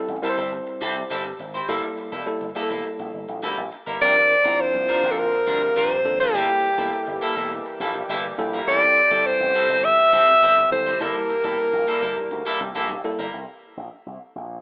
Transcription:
Already playing: G3 C4 E4 A4
0.09 A1, muted clean electric guitar stroke
0.22 G3 C4 E4 A4 A#4
0.29 C5
0.37 G1 G3 C4 E4 A4
0.52 muted clean electric guitar stroke
0.67 muted clean electric guitar stroke
0.81 C2 G3 C4 E4 A4
0.96 muted clean electric guitar stroke
1.10 G1 G3 C4 E4 A4
1.25 muted clean electric guitar stroke
1.39 G#1, muted clean electric guitar stroke
1.54 G3 C4 E4 C5
1.68 G1 G3 A#3 E4 A4
1.83 muted clean electric guitar stroke
1.98 muted clean electric guitar stroke
2.12 E1 G3 A#3 E4 A4
2.26 G3 A#3 E4 A4, muted clean electric guitar stroke
2.41 G1, muted clean electric guitar stroke
2.55 G3 A#3 E4 G#4 A4
2.63 A4
2.70 E1 G3 A#3 E4 A4
2.85 muted clean electric guitar stroke
2.99 A#1, muted clean electric guitar stroke
3.14 G1
3.29 A#1, muted clean electric guitar stroke
3.43 D2 G3 A#3 E4 A4
3.57 A#1, muted clean electric guitar stroke
3.72 muted clean electric guitar stroke
3.86 G1 G3 A#3 E4 A#4
4.01 C2 D3 F3 G3 A#3 C4 D4 F4 A#4 D5
4.16 muted clean electric guitar stroke
4.30 muted clean electric guitar stroke
4.44 A#1 F3 G3 C4 D4 E4 F4 A#4
4.59 C5, muted clean electric guitar stroke
4.74 C2, muted clean electric guitar stroke
4.88 G3 D4 F4 A#4
5.03 A#1 G3 D4 F4 A#4
5.11 A4
5.18 A#4, muted clean electric guitar stroke
5.32 muted clean electric guitar stroke
5.47 D2 G3 D4 F4 A#4
5.62 muted clean electric guitar stroke
5.76 A#1 G3 D4 F4 A#4 C5
5.91 muted clean electric guitar stroke
6.05 G#1 F3 C4 D4 A4, muted clean electric guitar stroke
6.20 G3 D4 F4 G4 C5
6.34 G1 E3 G3 A#3 E4 G4 A4
6.49 muted clean electric guitar stroke
6.63 muted clean electric guitar stroke
6.77 E1 G3 A#3 E4 A4
6.93 muted clean electric guitar stroke
7.07 G1, muted clean electric guitar stroke
7.21 G3 A#3 E4 A4
7.36 E1 G3 A#3 E4 A4
7.51 muted clean electric guitar stroke
7.66 muted clean electric guitar stroke
7.80 A#1 G3 A#3 E4 A4
7.95 muted clean electric guitar stroke
8.09 G1 G3 A#3 E4 A4
8.24 muted clean electric guitar stroke
8.38 A#1 G3 A#3 E4 A4, muted clean electric guitar stroke
8.53 G3 A#3 E4 A#4
8.67 A1 G3 C4 E4 A4 D5
8.82 muted clean electric guitar stroke
8.97 muted clean electric guitar stroke
9.11 G1 G3 C4 E4 A4
9.26 C5, muted clean electric guitar stroke
9.40 A1, muted clean electric guitar stroke
9.54 G3 C4 E4 A4
9.69 G1 C4 E4 A4
9.83 E5, muted clean electric guitar stroke
9.98 muted clean electric guitar stroke
10.12 C2 G3 C4 E4 A4
10.28 muted clean electric guitar stroke
10.42 G1 G3 C4 E4 A4
10.57 muted clean electric guitar stroke
10.71 G#1 G3 C4 E4 A4 C5, muted clean electric guitar stroke
10.86 G3 C4 E4 C5
11.00 G1 G3 A#3 E4 A4 A#4 A5
11.15 muted clean electric guitar stroke
11.29 muted clean electric guitar stroke
11.44 E1 G3 A#3 E4 A4 A5
11.58 muted clean electric guitar stroke
11.73 A#1, muted clean electric guitar stroke
11.87 G3 A#3 E4 A4
12.02 G1 G3 A#3 E4 A4
12.17 G2, muted clean electric guitar stroke
12.31 D2, muted clean electric guitar stroke
12.46 G3 A#3 E4 A4
12.61 C2, muted clean electric guitar stroke
12.75 A#1 G3 A#3 E4 A4
12.89 A#1, muted clean electric guitar stroke
13.04 G3 A#3 E4 A4, muted clean electric guitar stroke
13.19 G1 G3 A#3 E4 A#4
13.34 C2
13.77 A#1
14.06 C2
14.36 A#1

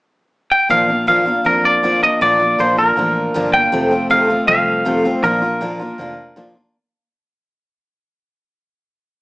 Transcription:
0.52 G5
0.69 A#1 A#2 F3 A#3 D4 F4 F5
0.88 A#3 D4 F4
1.07 A#2 F3 A#3 D4 F4 F5
1.26 A#3 D4 F4
1.44 F2 F3 A#3 D4 F4 A#4
1.65 D5
1.83 A#2 F3 A#3 D4 F4
2.02 A#3 D4 F4 D#5
2.21 A#1 A#2 F3 A#3 D4 F4 D5
2.40 A#3 D4 F4
2.59 A#1 A#2 F3 A#3 D4 F4 C5
2.77 A#3 D4 F4 A#4
2.96 A1 F3 A#3 D4 F4
3.34 G1 A#2 F3 A#3 D4 F4
3.53 A#3 D4 F4 G5
3.72 F1 F2 C3 F3 A3 C4 F4
3.91 F3 A3 C4 F4
4.10 F2 C3 F3 A3 C4 F4 F5
4.28 F3 A3 C4 F4
4.47 C2 F3 A3 C4 F4 F5
4.85 F2 C3 F3 A3 C4 F4
5.04 F3 A3 C4 F4
5.23 A#1 A#2 F3 A#3 D4 F4 A#4
5.42 A#3 D4 F4
5.61 A#2 F3 A#3 D4 F4
5.79 A#3 D4 F4
5.98 F1 F3 A#3 D4 F4
6.36 A#2 F3 A#3 D4 F4
6.55 A#3 D4 F4

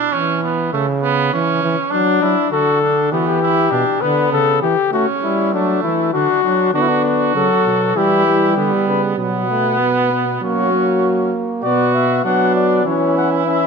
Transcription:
Already playing: D4
0.12 E3 C#4
0.43 B3
0.73 C#3 A3
1.02 B3
1.33 E3 C#4
1.63 E3
1.91 F#3 D4
2.22 F#3 E4
2.51 D3 F#4 A4
2.81 D4
3.12 E3 B3 G4
3.18 F#4
3.26 G4
3.42 E4
3.71 B2 D4
4.01 D3 B3 B4
4.32 C#3 A4
4.62 E3 G4
4.92 A3 C#4 F#4
5.23 G3 E4
5.53 F#3 A3 D4
5.83 E3 E4
6.13 D3 D4 F#4
6.44 F#3 D4
6.74 D3 B3 D4 F#4
6.81 E4
6.88 D4
7.05 F#4
7.35 C#3 F#3 A4
7.65 B2
7.95 E3 G3 E4 G4
8.27 G3
8.56 D3 B3
8.88 C#3 B4
9.18 B2 F#3 B3 F#5
9.50 A3
9.80 B3
10.12 B3
10.41 F#3 A#3 C#4 F#4
10.73 A#3
11.63 B2 B3 F#4 D5
11.94 E5
12.24 F#3 B3 D4 F#5
12.55 D5
12.85 E3 C#4 E4 C#5
13.17 F#5
13.46 C#4 E5

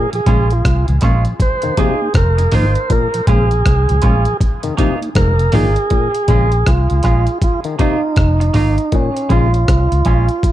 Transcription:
0.13 A#2 F3 G#4, closed hi-hat
0.26 A#1 C#3 G#3 A#3 C#4 F4, kick, closed hi-hat
0.50 A#2 F3 F4, closed hi-hat
0.65 C2, kick, cross-stick, closed hi-hat
0.88 C#2 A#2 F3, closed hi-hat
1.01 A#1 G#3 A#3 C#4 F4, kick, cross-stick, closed hi-hat
1.25 A#2 F3, closed hi-hat
1.40 C5, kick, closed hi-hat
1.62 F2 C3 D#3, closed hi-hat
1.77 C3 F3 A#3 D#4 F4 G#4, kick, closed hi-hat
2.02 A#3 D#4
2.14 F1 A#4, kick, cross-stick, closed hi-hat
2.38 F2 C3, muted clean electric guitar stroke, closed hi-hat
2.52 G#1 F3 A#3 D#4 F4 C5, kick, open hi-hat
2.75 closed hi-hat
2.90 A#2 A#4, kick, closed hi-hat
3.14 A#2 F3, closed hi-hat
3.27 A#1 C#3 G#3 A#3 C#4 F4 G#4, kick, closed hi-hat
3.51 A#2 F3, closed hi-hat
3.66 C2, kick, cross-stick, closed hi-hat
3.89 C#2 A#2 F3, closed hi-hat
4.02 A#1 G#3 A#3 C#4 F4, kick, closed hi-hat
4.25 A#2 F3, closed hi-hat
4.41 kick, closed hi-hat
4.63 F2 C3 D#3, closed hi-hat
4.77 C3 F3 A#3 D#4 F4, kick, closed hi-hat
5.01 A#3 D#4, closed hi-hat
5.15 F1 G#2 A#4, kick, cross-stick, closed hi-hat
5.39 F2 C3, closed hi-hat
5.52 G#1 A#2 F3 A#3 D#4 F4 G#4, kick, open hi-hat
5.76 closed hi-hat
5.90 A#2, kick, closed hi-hat
6.15 closed hi-hat
6.28 A#1 C#3 G#3 C#4 F4, kick, closed hi-hat
6.52 closed hi-hat
6.66 C2 F4, kick, cross-stick, closed hi-hat
6.90 C#2, closed hi-hat
7.03 A#1 G#3 C#4 F4, kick, cross-stick, closed hi-hat
7.27 closed hi-hat
7.42 F4, kick, closed hi-hat
7.64 D#3, closed hi-hat
7.79 C3 A#3 D#4 F4, kick, closed hi-hat
8.16 F1, kick, cross-stick, closed hi-hat
8.40 muted clean electric guitar stroke, closed hi-hat
8.54 G#1 A#3 D#4 F4, kick, open hi-hat
8.78 closed hi-hat
8.92 A#2 C#4, kick, closed hi-hat
9.17 closed hi-hat
9.29 A#1 C#3 G#3 C#4 F4, kick, closed hi-hat
9.54 closed hi-hat
9.68 C2, kick, cross-stick, closed hi-hat
9.92 C#2, closed hi-hat
10.05 A#1 G#3 C#4 F4, kick, closed hi-hat
10.28 closed hi-hat
10.43 kick, closed hi-hat

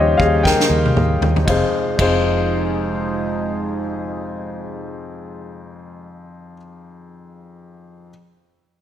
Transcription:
Already playing: D#2 C#3 F3 G3 A#3 C#4 D#4 F4 G4 C5 C#5 D#5
0.17 D#2 G#4 F5, kick
0.43 A#4 G5, kick, snare
0.60 snare
0.70 D#2
0.86 high tom
0.96 D#2, mid tom
1.21 D#2, floor tom
1.36 floor tom
1.46 F1 F2 C3 F3 G#3 D#4 F4 G#4, kick, ride
1.50 C5
1.97 F1 F2 D#4 F4 G#4, kick, ride
2.02 C5

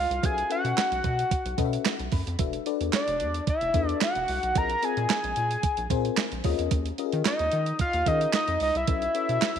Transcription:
Already playing: F5
0.10 C2, closed hi-hat
0.23 B1 C#4 F#4 A4 B4 E5 G#5, kick, closed hi-hat
0.38 closed hi-hat
0.49 C#4 F#4 A4 B4 F#5, closed hi-hat
0.65 B2, closed hi-hat
0.78 snare, clap, closed hi-hat
0.92 B1, closed hi-hat
1.04 B2, kick, closed hi-hat
1.19 closed hi-hat
1.31 kick, closed hi-hat
1.46 B1, closed hi-hat
1.58 B2 C#4 F#4 A4 B4 D#5, kick, closed hi-hat
1.65 E5
1.73 closed hi-hat
1.85 F#5, snare, clap, closed hi-hat
1.99 B1, closed hi-hat
2.12 F#2 B5, kick, open hi-hat
2.27 F2, closed hi-hat
2.39 E1 D4 F#4 A4 B4 E5, kick, closed hi-hat
2.53 closed hi-hat
2.66 D4 F#4 A4 B4 D5, closed hi-hat
2.81 E2, closed hi-hat
2.93 D5, snare, clap, closed hi-hat
3.08 E1, closed hi-hat
3.20 E2, closed hi-hat
3.34 closed hi-hat
3.47 E5, kick, closed hi-hat
3.61 E1, closed hi-hat
3.74 E2 D4 F#4 A4 B4 E5, kick, closed hi-hat
3.89 closed hi-hat
4.01 F#5, snare, clap, closed hi-hat
4.15 E1, closed hi-hat
4.28 C2, open hi-hat
4.43 B1, closed hi-hat
4.55 A#1 C4 F4 G#4 A#4 D#5 A#5, kick, closed hi-hat
4.70 closed hi-hat
4.82 C4 F4 G#4 A#4 D#5 G#5, closed hi-hat
4.97 A#2, closed hi-hat
5.10 snare, clap, closed hi-hat
5.24 A#1, closed hi-hat
5.36 A#2, closed hi-hat
5.51 closed hi-hat
5.63 kick, closed hi-hat
5.77 A#1, closed hi-hat
5.90 A#2 C4 F4 G#4 A#4 C5, kick, closed hi-hat
6.05 closed hi-hat
6.17 snare, clap, closed hi-hat
6.32 A#1, closed hi-hat
6.44 D#2 C#4 F4 G#4 A#4 D#5, kick, open hi-hat
6.59 E2, closed hi-hat
6.71 D#2, kick, closed hi-hat
6.86 closed hi-hat
6.98 C#4 F4 G4 A#4 D#5, closed hi-hat
7.05 G#4
7.12 D#3, closed hi-hat
7.25 D#5, snare, clap, closed hi-hat
7.39 D#2, closed hi-hat
7.52 D#3, closed hi-hat
7.66 closed hi-hat
7.79 F5, kick, closed hi-hat
7.93 D#2, closed hi-hat
8.06 D#3 C#4 F4 G#4 A#4 D#5, kick, closed hi-hat
8.21 closed hi-hat
8.33 D#5, snare, clap, closed hi-hat
8.48 F2, closed hi-hat
8.60 C#2 D#5, open hi-hat
8.75 C2 E5, closed hi-hat
8.87 B1 C#4 F#4 A4 B4 E5, kick, closed hi-hat
9.02 closed hi-hat
9.14 C#4 F#4 A4 B4 C#5, closed hi-hat
9.29 B2, closed hi-hat
9.42 snare, clap, closed hi-hat
9.56 B1, closed hi-hat

